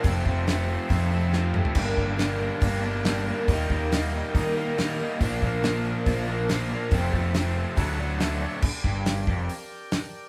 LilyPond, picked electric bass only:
\new Staff \with { instrumentName = "Picked electric bass" } { \clef bass \time 4/4 \key g \minor \tempo 4 = 140 f,,8 f,,4. f,2 | g,,8 g,,4. g,,2 | ees,8 ees,4. ees2 | bes,,8 bes,,4. bes,,2 |
f,,8 f,,4. d,2 | r8 g,,4 f,,8 r2 | }